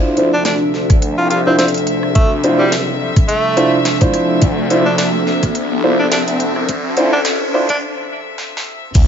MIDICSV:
0, 0, Header, 1, 10, 480
1, 0, Start_track
1, 0, Key_signature, -1, "minor"
1, 0, Tempo, 566038
1, 1830, Time_signature, 4, 2, 24, 8
1, 7696, End_track
2, 0, Start_track
2, 0, Title_t, "Grand piano"
2, 0, Program_c, 0, 0
2, 0, Note_on_c, 0, 62, 95
2, 0, Note_on_c, 0, 64, 91
2, 0, Note_on_c, 0, 65, 91
2, 0, Note_on_c, 0, 72, 105
2, 124, Note_off_c, 0, 62, 0
2, 124, Note_off_c, 0, 64, 0
2, 124, Note_off_c, 0, 72, 0
2, 125, Note_off_c, 0, 65, 0
2, 150, Note_on_c, 0, 62, 81
2, 150, Note_on_c, 0, 64, 75
2, 150, Note_on_c, 0, 65, 77
2, 150, Note_on_c, 0, 72, 93
2, 249, Note_off_c, 0, 62, 0
2, 250, Note_off_c, 0, 64, 0
2, 250, Note_off_c, 0, 65, 0
2, 250, Note_off_c, 0, 72, 0
2, 1245, Note_on_c, 0, 62, 84
2, 1245, Note_on_c, 0, 65, 76
2, 1246, Note_on_c, 0, 64, 80
2, 1246, Note_on_c, 0, 72, 93
2, 1374, Note_off_c, 0, 62, 0
2, 1374, Note_off_c, 0, 64, 0
2, 1374, Note_off_c, 0, 65, 0
2, 1374, Note_off_c, 0, 72, 0
2, 2070, Note_on_c, 0, 62, 96
2, 2070, Note_on_c, 0, 64, 88
2, 2070, Note_on_c, 0, 65, 88
2, 2070, Note_on_c, 0, 72, 107
2, 2224, Note_off_c, 0, 62, 0
2, 2224, Note_off_c, 0, 64, 0
2, 2224, Note_off_c, 0, 65, 0
2, 2224, Note_off_c, 0, 72, 0
2, 3027, Note_on_c, 0, 62, 91
2, 3027, Note_on_c, 0, 64, 85
2, 3027, Note_on_c, 0, 72, 102
2, 3028, Note_on_c, 0, 65, 88
2, 3182, Note_off_c, 0, 62, 0
2, 3182, Note_off_c, 0, 64, 0
2, 3182, Note_off_c, 0, 72, 0
2, 3183, Note_off_c, 0, 65, 0
2, 3404, Note_on_c, 0, 62, 83
2, 3404, Note_on_c, 0, 64, 78
2, 3404, Note_on_c, 0, 65, 78
2, 3404, Note_on_c, 0, 72, 94
2, 3749, Note_off_c, 0, 62, 0
2, 3749, Note_off_c, 0, 64, 0
2, 3749, Note_off_c, 0, 65, 0
2, 3749, Note_off_c, 0, 72, 0
2, 3991, Note_on_c, 0, 62, 77
2, 3991, Note_on_c, 0, 64, 74
2, 3991, Note_on_c, 0, 65, 69
2, 3991, Note_on_c, 0, 72, 86
2, 4090, Note_off_c, 0, 62, 0
2, 4090, Note_off_c, 0, 64, 0
2, 4090, Note_off_c, 0, 65, 0
2, 4090, Note_off_c, 0, 72, 0
2, 4951, Note_on_c, 0, 62, 79
2, 4952, Note_on_c, 0, 64, 73
2, 4952, Note_on_c, 0, 65, 74
2, 4952, Note_on_c, 0, 72, 85
2, 5050, Note_off_c, 0, 62, 0
2, 5050, Note_off_c, 0, 64, 0
2, 5050, Note_off_c, 0, 72, 0
2, 5051, Note_off_c, 0, 65, 0
2, 5913, Note_on_c, 0, 72, 97
2, 5914, Note_on_c, 0, 62, 85
2, 5914, Note_on_c, 0, 64, 78
2, 5914, Note_on_c, 0, 65, 76
2, 6011, Note_off_c, 0, 62, 0
2, 6011, Note_off_c, 0, 64, 0
2, 6011, Note_off_c, 0, 65, 0
2, 6011, Note_off_c, 0, 72, 0
2, 6394, Note_on_c, 0, 64, 79
2, 6395, Note_on_c, 0, 62, 85
2, 6395, Note_on_c, 0, 65, 76
2, 6395, Note_on_c, 0, 72, 94
2, 6491, Note_off_c, 0, 64, 0
2, 6492, Note_off_c, 0, 62, 0
2, 6492, Note_off_c, 0, 65, 0
2, 6492, Note_off_c, 0, 72, 0
2, 7696, End_track
3, 0, Start_track
3, 0, Title_t, "Ambient pad"
3, 0, Program_c, 1, 92
3, 0, Note_on_c, 1, 62, 86
3, 0, Note_on_c, 1, 69, 73
3, 6632, Note_off_c, 1, 62, 0
3, 6635, Note_off_c, 1, 69, 0
3, 7592, Note_on_c, 1, 62, 84
3, 7696, Note_off_c, 1, 62, 0
3, 7696, End_track
4, 0, Start_track
4, 0, Title_t, "Tenor saxophone"
4, 0, Program_c, 2, 66
4, 285, Note_on_c, 2, 62, 87
4, 352, Note_off_c, 2, 62, 0
4, 389, Note_on_c, 2, 62, 73
4, 476, Note_off_c, 2, 62, 0
4, 1001, Note_on_c, 2, 65, 89
4, 1070, Note_off_c, 2, 65, 0
4, 1107, Note_on_c, 2, 65, 76
4, 1195, Note_off_c, 2, 65, 0
4, 1244, Note_on_c, 2, 60, 82
4, 1312, Note_off_c, 2, 60, 0
4, 1346, Note_on_c, 2, 60, 72
4, 1435, Note_off_c, 2, 60, 0
4, 1825, Note_on_c, 2, 57, 92
4, 1966, Note_off_c, 2, 57, 0
4, 2197, Note_on_c, 2, 55, 91
4, 2310, Note_off_c, 2, 55, 0
4, 2782, Note_on_c, 2, 57, 90
4, 3161, Note_off_c, 2, 57, 0
4, 4122, Note_on_c, 2, 62, 85
4, 4190, Note_off_c, 2, 62, 0
4, 4223, Note_on_c, 2, 62, 72
4, 4313, Note_off_c, 2, 62, 0
4, 5081, Note_on_c, 2, 62, 82
4, 5150, Note_off_c, 2, 62, 0
4, 5191, Note_on_c, 2, 62, 73
4, 5277, Note_off_c, 2, 62, 0
4, 6046, Note_on_c, 2, 62, 89
4, 6113, Note_off_c, 2, 62, 0
4, 6530, Note_on_c, 2, 62, 90
4, 6595, Note_off_c, 2, 62, 0
4, 7696, End_track
5, 0, Start_track
5, 0, Title_t, "String section"
5, 0, Program_c, 3, 48
5, 0, Note_on_c, 3, 48, 76
5, 0, Note_on_c, 3, 53, 67
5, 0, Note_on_c, 3, 76, 82
5, 7557, Note_off_c, 3, 48, 0
5, 7557, Note_off_c, 3, 53, 0
5, 7558, Note_off_c, 3, 76, 0
5, 7586, Note_on_c, 3, 53, 72
5, 7588, Note_on_c, 3, 48, 79
5, 7589, Note_on_c, 3, 76, 88
5, 7696, Note_off_c, 3, 48, 0
5, 7696, Note_off_c, 3, 53, 0
5, 7696, Note_off_c, 3, 76, 0
5, 7696, End_track
6, 0, Start_track
6, 0, Title_t, "Detuned saw bass"
6, 0, Program_c, 4, 39
6, 0, Note_on_c, 4, 38, 100
6, 133, Note_off_c, 4, 38, 0
6, 146, Note_on_c, 4, 38, 96
6, 611, Note_off_c, 4, 38, 0
6, 627, Note_on_c, 4, 38, 96
6, 982, Note_off_c, 4, 38, 0
6, 1002, Note_on_c, 4, 36, 96
6, 1462, Note_off_c, 4, 36, 0
6, 1483, Note_on_c, 4, 38, 93
6, 1702, Note_off_c, 4, 38, 0
6, 1725, Note_on_c, 4, 36, 95
6, 1813, Note_off_c, 4, 36, 0
6, 1829, Note_on_c, 4, 38, 97
6, 2053, Note_off_c, 4, 38, 0
6, 2068, Note_on_c, 4, 38, 93
6, 2532, Note_off_c, 4, 38, 0
6, 3749, Note_on_c, 4, 38, 103
6, 3973, Note_off_c, 4, 38, 0
6, 3987, Note_on_c, 4, 38, 92
6, 4452, Note_off_c, 4, 38, 0
6, 4468, Note_on_c, 4, 38, 94
6, 4823, Note_off_c, 4, 38, 0
6, 4846, Note_on_c, 4, 36, 98
6, 5304, Note_off_c, 4, 36, 0
6, 5326, Note_on_c, 4, 38, 97
6, 5544, Note_off_c, 4, 38, 0
6, 5564, Note_on_c, 4, 36, 96
6, 5653, Note_off_c, 4, 36, 0
6, 5671, Note_on_c, 4, 38, 101
6, 5894, Note_off_c, 4, 38, 0
6, 5908, Note_on_c, 4, 38, 98
6, 6372, Note_off_c, 4, 38, 0
6, 6389, Note_on_c, 4, 38, 98
6, 6629, Note_off_c, 4, 38, 0
6, 7591, Note_on_c, 4, 38, 99
6, 7696, Note_off_c, 4, 38, 0
6, 7696, End_track
7, 0, Start_track
7, 0, Title_t, "Impact"
7, 0, Program_c, 5, 103
7, 7590, Note_on_c, 5, 60, 76
7, 7696, Note_off_c, 5, 60, 0
7, 7696, End_track
8, 0, Start_track
8, 0, Title_t, "Riser"
8, 0, Program_c, 6, 103
8, 0, Note_on_c, 6, 60, 80
8, 6629, Note_off_c, 6, 60, 0
8, 7696, End_track
9, 0, Start_track
9, 0, Title_t, "Shekere"
9, 7586, Note_on_c, 9, 82, 36
9, 7671, Note_off_c, 9, 82, 0
9, 7696, End_track
10, 0, Start_track
10, 0, Title_t, "Drums"
10, 143, Note_on_c, 9, 42, 62
10, 228, Note_off_c, 9, 42, 0
10, 382, Note_on_c, 9, 38, 115
10, 382, Note_on_c, 9, 42, 81
10, 467, Note_off_c, 9, 38, 0
10, 467, Note_off_c, 9, 42, 0
10, 628, Note_on_c, 9, 38, 36
10, 712, Note_off_c, 9, 38, 0
10, 762, Note_on_c, 9, 37, 40
10, 762, Note_on_c, 9, 42, 67
10, 766, Note_on_c, 9, 36, 97
10, 847, Note_off_c, 9, 37, 0
10, 847, Note_off_c, 9, 42, 0
10, 851, Note_off_c, 9, 36, 0
10, 866, Note_on_c, 9, 42, 78
10, 951, Note_off_c, 9, 42, 0
10, 1107, Note_on_c, 9, 42, 67
10, 1192, Note_off_c, 9, 42, 0
10, 1346, Note_on_c, 9, 38, 116
10, 1346, Note_on_c, 9, 42, 77
10, 1428, Note_off_c, 9, 42, 0
10, 1428, Note_on_c, 9, 42, 60
10, 1430, Note_off_c, 9, 38, 0
10, 1479, Note_off_c, 9, 42, 0
10, 1479, Note_on_c, 9, 42, 61
10, 1506, Note_off_c, 9, 42, 0
10, 1506, Note_on_c, 9, 42, 51
10, 1584, Note_off_c, 9, 42, 0
10, 1584, Note_on_c, 9, 42, 65
10, 1669, Note_off_c, 9, 42, 0
10, 1722, Note_on_c, 9, 37, 54
10, 1806, Note_off_c, 9, 37, 0
10, 1826, Note_on_c, 9, 42, 86
10, 1830, Note_on_c, 9, 36, 122
10, 1911, Note_off_c, 9, 42, 0
10, 1915, Note_off_c, 9, 36, 0
10, 2066, Note_on_c, 9, 42, 65
10, 2151, Note_off_c, 9, 42, 0
10, 2308, Note_on_c, 9, 38, 120
10, 2308, Note_on_c, 9, 42, 80
10, 2392, Note_off_c, 9, 38, 0
10, 2392, Note_off_c, 9, 42, 0
10, 2683, Note_on_c, 9, 37, 41
10, 2683, Note_on_c, 9, 42, 70
10, 2685, Note_on_c, 9, 36, 109
10, 2768, Note_off_c, 9, 37, 0
10, 2768, Note_off_c, 9, 42, 0
10, 2770, Note_off_c, 9, 36, 0
10, 2787, Note_on_c, 9, 42, 81
10, 2871, Note_off_c, 9, 42, 0
10, 3028, Note_on_c, 9, 42, 66
10, 3113, Note_off_c, 9, 42, 0
10, 3267, Note_on_c, 9, 38, 121
10, 3267, Note_on_c, 9, 42, 83
10, 3352, Note_off_c, 9, 38, 0
10, 3352, Note_off_c, 9, 42, 0
10, 3400, Note_on_c, 9, 42, 61
10, 3405, Note_on_c, 9, 36, 108
10, 3485, Note_off_c, 9, 42, 0
10, 3490, Note_off_c, 9, 36, 0
10, 3507, Note_on_c, 9, 37, 40
10, 3507, Note_on_c, 9, 42, 65
10, 3592, Note_off_c, 9, 37, 0
10, 3592, Note_off_c, 9, 42, 0
10, 3745, Note_on_c, 9, 42, 82
10, 3750, Note_on_c, 9, 36, 127
10, 3830, Note_off_c, 9, 42, 0
10, 3835, Note_off_c, 9, 36, 0
10, 3989, Note_on_c, 9, 42, 67
10, 4073, Note_off_c, 9, 42, 0
10, 4225, Note_on_c, 9, 38, 121
10, 4225, Note_on_c, 9, 42, 79
10, 4310, Note_off_c, 9, 38, 0
10, 4310, Note_off_c, 9, 42, 0
10, 4469, Note_on_c, 9, 38, 39
10, 4553, Note_off_c, 9, 38, 0
10, 4603, Note_on_c, 9, 37, 38
10, 4603, Note_on_c, 9, 42, 68
10, 4607, Note_on_c, 9, 36, 108
10, 4688, Note_off_c, 9, 37, 0
10, 4688, Note_off_c, 9, 42, 0
10, 4692, Note_off_c, 9, 36, 0
10, 4707, Note_on_c, 9, 42, 84
10, 4791, Note_off_c, 9, 42, 0
10, 5186, Note_on_c, 9, 38, 126
10, 5186, Note_on_c, 9, 42, 81
10, 5271, Note_off_c, 9, 38, 0
10, 5271, Note_off_c, 9, 42, 0
10, 5323, Note_on_c, 9, 42, 62
10, 5408, Note_off_c, 9, 42, 0
10, 5427, Note_on_c, 9, 42, 67
10, 5512, Note_off_c, 9, 42, 0
10, 5564, Note_on_c, 9, 37, 50
10, 5649, Note_off_c, 9, 37, 0
10, 5670, Note_on_c, 9, 42, 80
10, 5673, Note_on_c, 9, 36, 126
10, 5754, Note_off_c, 9, 42, 0
10, 5758, Note_off_c, 9, 36, 0
10, 5908, Note_on_c, 9, 42, 62
10, 5993, Note_off_c, 9, 42, 0
10, 6147, Note_on_c, 9, 38, 118
10, 6147, Note_on_c, 9, 42, 79
10, 6232, Note_off_c, 9, 38, 0
10, 6232, Note_off_c, 9, 42, 0
10, 6521, Note_on_c, 9, 42, 67
10, 6528, Note_on_c, 9, 36, 110
10, 6575, Note_on_c, 9, 37, 39
10, 6606, Note_off_c, 9, 42, 0
10, 6613, Note_off_c, 9, 36, 0
10, 6659, Note_off_c, 9, 37, 0
10, 7108, Note_on_c, 9, 38, 66
10, 7192, Note_off_c, 9, 38, 0
10, 7268, Note_on_c, 9, 38, 83
10, 7352, Note_off_c, 9, 38, 0
10, 7589, Note_on_c, 9, 42, 88
10, 7589, Note_on_c, 9, 49, 107
10, 7593, Note_on_c, 9, 36, 122
10, 7674, Note_off_c, 9, 42, 0
10, 7674, Note_off_c, 9, 49, 0
10, 7678, Note_off_c, 9, 36, 0
10, 7696, End_track
0, 0, End_of_file